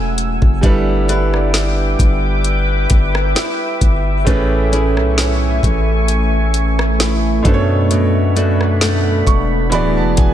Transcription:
Already playing: 808-style bass E1, grand piano F#3 C#4 E4 G#4 A4, nylon-string guitar F#3 A3 E4 G#4, ambient pad A3 F#5 G#5 E6
0.18 closed hi-hat
0.42 808-style bass F#1, kick
0.61 808-style bass G1, grand piano G3 D4 E4 A4, nylon-string guitar G3, ambient pad B4 E5 G5 D6, kick, closed hi-hat
0.66 grand piano B4
1.08 nylon-string guitar D4 E4 B4, closed hi-hat
1.34 cross-stick
1.53 nylon-string guitar D4, snare, closed hi-hat
1.99 808-style bass G1, kick, closed hi-hat
2.44 closed hi-hat
2.90 808-style bass G1, kick, closed hi-hat
3.15 cross-stick
3.35 nylon-string guitar E4, snare, closed hi-hat
3.81 808-style bass G1, kick, closed hi-hat
4.25 808-style bass A1, grand piano A2 A3 C#4 G#4, nylon-string guitar A3, ambient pad A3 G#5 C#6, kick, closed hi-hat
4.29 grand piano B4
4.72 nylon-string guitar C#4 E4 G#4, closed hi-hat
4.97 808-style bass B1, cross-stick
5.18 nylon-string guitar C#4, snare, closed hi-hat
5.63 808-style bass A1, kick, closed hi-hat
6.08 closed hi-hat
6.54 closed hi-hat
6.79 cross-stick
7.00 nylon-string guitar E4, snare, closed hi-hat
7.43 808-style bass F#2, grand piano B2 B3 D4 A4, nylon-string guitar B2, ambient pad D4 F#5 B5, kick, closed hi-hat
7.47 grand piano C5
7.54 grand piano C#5
7.91 nylon-string guitar B2, closed hi-hat
8.36 nylon-string guitar A3 D4 F#4, closed hi-hat
8.61 cross-stick
8.81 nylon-string guitar A3, snare, closed hi-hat
9.27 808-style bass E1, grand piano C#6, kick, closed hi-hat
9.70 808-style bass D1, grand piano E3 B3 F#4 G#4 B5, nylon-string guitar E3, ambient pad G#4 E5, closed hi-hat
9.74 grand piano D5
9.97 808-style bass E1, grand piano A5
10.17 808-style bass E1, grand piano G#5, kick, closed hi-hat

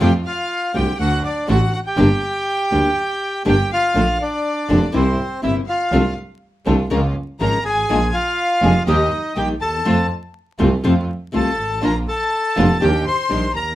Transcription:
0.00 double bass F2, nylon-string guitar F3 A3 C4 F4, string section A3 C4 F4, bandoneon G4 G5, violin section G5
0.26 bandoneon F4 F5, violin section F5
0.74 double bass C2, nylon-string guitar D3 A3 D4 F#4, string section A3 C4 F4, bandoneon G4 G5, violin section G5
0.99 double bass D2, string section A3 D4 F#4, bandoneon F#4 F#5, violin section F#5
1.24 bandoneon D4 D5, violin section D5
1.47 double bass A1, nylon-string guitar D3 A3 D4 F#4, string section A3 D4 F#4, bandoneon F#4 F#5, violin section F#5
1.73 bandoneon F#4 F#5, violin section F#5
1.85 bandoneon G4 G5, violin section G5
1.97 double bass G1, nylon-string guitar D3 G3 A#3 D4 G4, string section A#3 D4 G4
2.71 double bass D2, nylon-string guitar D3 G3 A#3 D4 G4, string section A#3 D4 G4
3.45 double bass G1, nylon-string guitar D3 G3 A#3 D4 G4, string section A#3 D4 G4, violin section G5
3.49 bandoneon G4 G5
3.72 bandoneon F4 F5, violin section F5
3.94 double bass A#1, nylon-string guitar D3 A3 D4 F4, string section A#3 D4 A4
4.20 bandoneon D4 D5, violin section D5
4.69 double bass F1, nylon-string guitar D3 A3 D4 F4, string section A#3 D4 A4
4.92 double bass C2, nylon-string guitar C3 E3 A#3 C4 E4, string section A#3 C4 E4, bandoneon C4 C5, violin section C5
5.42 double bass G1, nylon-string guitar C3 E3 A#3 C4 E4, string section A#3 C4 E4, bandoneon E4 E5, violin section E5
5.67 bandoneon F4 F5, violin section F5
5.92 double bass C2, nylon-string guitar C3 F3 C4 D4 A4, string section A3 D4 F4
6.65 double bass C2, nylon-string guitar C3 F3 C4 D4 A4, string section A3 D4 F4
6.90 double bass C#2, nylon-string guitar C#3 F3 G#3 C#4 F4 A#4, string section A#3 C#4 F4
7.40 double bass G#1, nylon-string guitar C#3 F3 G#3 C#4 F4 A#4, string section A#3 C#4 F4, bandoneon A#4 A#5, violin section A#5
7.64 double bass G#1, bandoneon G#4 G#5, violin section G#5
7.88 double bass A#1, nylon-string guitar F3 G#3 D4 F4, string section A#3 D4 G#4
8.13 bandoneon F4 F5, violin section F5
8.62 double bass F1, nylon-string guitar F3 G#3 D4 F4, string section A#3 D4 G#4
8.86 double bass D#2, nylon-string guitar D#3 G3 A#3 D#4 G4, string section A#3 D#4 G4, bandoneon D#4 D#5, violin section D#5
9.36 double bass A#1, nylon-string guitar D#3 G3 A#3 D#4 G4, string section A#3 D#4 G4, bandoneon G4 G5, violin section G5
9.61 double bass D#2, bandoneon A4 A5, violin section A5
9.85 double bass F2, nylon-string guitar C3 F3 A3 C4 F4, string section A3 C4 F4
10.59 double bass C2, nylon-string guitar C3 F3 A3 C4 F4, string section A3 C4 F4
10.83 double bass F2, nylon-string guitar C3 F3 A3 C4 F4, string section A3 C4 F4
11.32 double bass C2, nylon-string guitar C3 F3 A3 C4 F4, string section A3 C4 F4, bandoneon A4, violin section A5
11.36 bandoneon A5
11.59 double bass G#1
11.82 double bass A#1, nylon-string guitar F3 A#3 D4 F4, string section A#3 D4 F4, bandoneon A#4 A#5, violin section A#5
12.08 bandoneon A4 A5, violin section A5
12.56 double bass F1, nylon-string guitar F3 A#3 D4 F4, string section A#3 D4 F4
12.80 double bass D#2, nylon-string guitar D#3 G3 D4 G4, string section D4 D#4 G4, bandoneon G4 G5, violin section G5
13.06 bandoneon C5 C6, violin section C6
13.29 double bass A#1, nylon-string guitar D#3 G3 D4 G4, string section D4 D#4 G4
13.55 double bass D#2, bandoneon A#4 A#5, violin section A#5

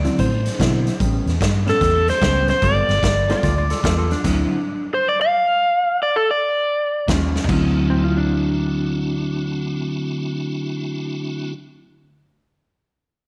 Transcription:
Already playing: electric slide guitar D5
0.05 clean electric guitar D3 F#3 C4 E4, snare, closed hi-hat
0.18 fingered electric bass A2, tonewheel organ F3 B3 C#4 D#4, electric slide guitar C5, kick, closed hi-hat
0.45 tonewheel organ F#3 C4 D4 E4, snare, closed hi-hat
0.59 fingered electric bass B2, clean electric guitar D3 F#3 C4 E4, kick, snare, closed hi-hat
0.87 snare, closed hi-hat
0.99 fingered electric bass A1, clean electric guitar A2 G3 B3 C#4, kick, closed hi-hat
1.26 fingered electric bass E2, snare, closed hi-hat
1.41 fingered electric bass G2, kick, snare, closed hi-hat
1.67 clean electric guitar A2 G3 B3 C#4, overdriven electric guitar A4, snare, closed hi-hat
1.81 fingered electric bass E2, tonewheel organ G3 A3 C#4 G4, kick, snare, closed hi-hat
2.08 overdriven electric guitar C5, snare, closed hi-hat
2.21 fingered electric bass C#2, clean electric guitar A2 G3 B3 C#4, kick, snare, closed hi-hat
2.48 overdriven electric guitar C5, snare, closed hi-hat
2.62 fingered electric bass G1, clean electric guitar G3 B3 F4 A4, overdriven electric guitar D5, kick, closed hi-hat
2.88 fingered electric bass G1, snare, closed hi-hat
3.03 fingered electric bass G1, kick, snare, closed hi-hat
3.29 clean electric guitar G3 B3 F4 A4, tonewheel organ A3 B3 F4 G4, electric slide guitar F4 D5, snare, closed hi-hat
3.43 fingered electric bass D2, electric slide guitar F4 D5, kick, snare, closed hi-hat
3.57 electric slide guitar F4 D5
3.70 electric slide guitar F4 A4, snare, closed hi-hat
3.83 fingered electric bass E2, clean electric guitar G3 B3 F4 A4, electric slide guitar F4 A4, kick, snare, closed hi-hat
3.98 electric slide guitar F4 A4
4.11 electric slide guitar D4, snare, closed hi-hat
4.24 fingered electric bass D2, clean electric guitar D3 F#3 C4 E4, kick, snare, closed hi-hat, crash
4.94 overdriven electric guitar C5
5.09 overdriven electric guitar D5
5.21 overdriven electric guitar F5
6.03 overdriven electric guitar D5
6.16 overdriven electric guitar A4
6.31 overdriven electric guitar D5
7.07 fingered electric bass D#2, clean electric guitar D#3 G3 C#4 F4, kick, snare, closed hi-hat
7.36 snare
7.44 clean electric guitar D3, tonewheel organ A3, floor tom
7.48 fingered electric bass D2, clean electric guitar F#3 C4 E4, tonewheel organ C4 D4 E4 F#4, kick, crash
7.90 electric slide guitar C4
8.04 electric slide guitar F4
8.17 electric slide guitar D4

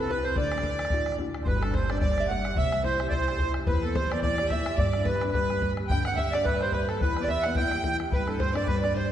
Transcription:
Already playing: upright bass C2, upright piano C3
0.00 accordion A4
0.08 upright piano C4 E4 G4, fiddle B4, accordion B4, five-string banjo B4, bodhran
0.24 accordion C5, five-string banjo C5, fiddle C5
0.35 upright bass D2, upright piano D3, fiddle D5, five-string banjo D5, accordion D5, bodhran
0.52 bodhran
0.58 bodhran
0.63 bodhran
0.79 bodhran
0.85 bodhran
0.90 upright piano D4 E4 F#4, bodhran
1.06 bodhran
1.12 bodhran
1.18 upright piano D4 E4 F#4, bodhran
1.34 bodhran
1.44 upright bass G1, upright piano G3, fiddle B4, accordion B4 C5, five-string banjo B4, bodhran
1.61 upright piano D4, five-string banjo A4, accordion A4, fiddle A4, bodhran
1.73 upright piano G4, accordion C5, five-string banjo C5, fiddle C5, bodhran
1.89 upright piano D4, accordion D5, five-string banjo D5, bodhran
2.00 upright piano G3, accordion D5, five-string banjo D5, fiddle D5, bodhran
2.18 upright piano G4, five-string banjo E5, bodhran
2.24 bodhran
2.28 upright piano G3, accordion F#5, fiddle F#5, five-string banjo F#5, bodhran
2.45 upright piano G4, bodhran
2.56 upright bass C2, upright piano C3, fiddle E5, five-string banjo E5, accordion E5, bodhran
2.72 upright piano G3, bodhran
2.84 upright piano E4, five-string banjo C5, fiddle C5, accordion C5, bodhran
3.00 upright piano G4, bodhran
3.09 accordion C5 D5, five-string banjo C5, fiddle C5, bodhran
3.14 upright piano E4
3.28 upright piano G4, bodhran
3.34 bodhran
3.38 upright piano E4, five-string banjo C5, bodhran
3.54 upright piano G4, bodhran
3.66 upright bass E2, upright piano E3, fiddle B4, five-string banjo B4, accordion B4, bodhran
3.82 upright piano B3, fiddle A4, accordion A4
3.94 upright piano G4, fiddle C5, accordion C5, five-string banjo C5, bodhran
4.10 upright piano B3, fiddle D5, accordion D5, five-string banjo D5, bodhran
4.21 upright piano E3, fiddle D5, accordion D5, five-string banjo D5, bodhran
4.38 upright piano G4, five-string banjo D5, bodhran
4.44 fiddle E5, bodhran
4.49 upright piano E3, accordion E5, five-string banjo E5, bodhran
4.66 upright piano G4, bodhran
4.76 upright bass G2, upright piano G3, fiddle D5, accordion D5, five-string banjo D5, bodhran
4.93 upright piano D4, bodhran
5.03 fiddle B4, accordion B4, bodhran
5.08 upright piano G4, five-string banjo B4
5.21 upright piano D4, bodhran
5.31 accordion B4, fiddle B4, five-string banjo B4, bodhran
5.35 upright piano G3
5.50 upright piano G4, bodhran
5.56 bodhran
5.62 upright piano G3, bodhran
5.77 upright piano G4, bodhran
5.88 upright bass G2, accordion G5, fiddle G5, five-string banjo G5, bodhran
5.92 upright piano D3
6.04 upright piano D4, fiddle F#5, accordion F#5, five-string banjo F#5, bodhran
6.14 upright piano G4, accordion E5, fiddle E5 F#5, bodhran
6.19 five-string banjo E5
6.31 upright piano D4, accordion D5, fiddle D5, five-string banjo D5, bodhran
6.45 upright piano G3, accordion B4, five-string banjo B4, fiddle B4, bodhran
6.61 upright piano G4, accordion C5, five-string banjo C5, bodhran
6.66 bodhran
6.72 upright piano G3, fiddle B4, accordion B4, five-string banjo B4, bodhran
6.88 accordion A4, fiddle A4, five-string banjo A4, bodhran
6.99 upright bass E2, upright piano E3, fiddle B4, accordion B4, bodhran
7.03 five-string banjo B4
7.17 upright piano B3, bodhran
7.21 fiddle C5 D5, accordion D5, five-string banjo D5
7.27 upright piano G4, fiddle E5, accordion E5, five-string banjo E5, bodhran
7.42 accordion F#5, fiddle F#5, five-string banjo F#5, bodhran
7.46 upright piano B3
7.55 upright piano E3, fiddle G5, accordion G5, five-string banjo G5, bodhran
7.71 upright piano G4, bodhran
7.78 bodhran
7.84 upright piano E3, bodhran
8.00 upright piano G4, bodhran
8.11 upright bass G2, upright piano G3, fiddle B4, accordion B4, five-string banjo B4, bodhran
8.27 upright piano D4, accordion A4, bodhran
8.39 upright piano G3, fiddle C5, accordion C5, five-string banjo C5, bodhran
8.53 upright piano D4, fiddle D5, accordion D5, five-string banjo D5, bodhran
8.64 upright piano G3, fiddle B4, accordion B4, five-string banjo B4, bodhran
8.80 upright piano D4, fiddle D5, accordion D5, bodhran
8.85 five-string banjo D5
8.90 bodhran
8.94 upright piano G3, fiddle C5, five-string banjo C5, accordion C5, bodhran

